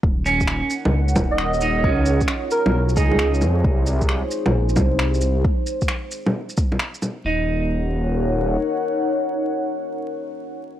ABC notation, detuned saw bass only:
X:1
M:4/4
L:1/16
Q:"Swing 16ths" 1/4=133
K:Ebm
V:1 name="Detuned saw bass" clef=bass
E,,,4- E,,, z2 D,,3 E,,,6 | D,,3 z4 C,,3 D,,4 F,,2 | =C,,4- C,, z2 B,,,3 C,,6 | z16 |
E,,,12 z4 | z16 |]